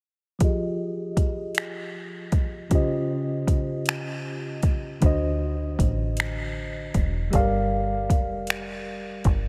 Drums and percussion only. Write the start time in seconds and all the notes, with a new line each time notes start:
0.40 kick, closed hi-hat
1.17 kick, closed hi-hat
1.55 finger snap, closed hi-hat
2.32 kick, closed hi-hat
2.71 kick, closed hi-hat
3.47 kick, closed hi-hat
3.86 finger snap, closed hi-hat
4.63 kick, closed hi-hat
5.02 kick, closed hi-hat
5.79 kick, closed hi-hat
6.17 finger snap, closed hi-hat
6.94 kick, closed hi-hat
7.33 kick, closed hi-hat
8.10 kick, closed hi-hat
8.47 finger snap, closed hi-hat
9.24 kick, closed hi-hat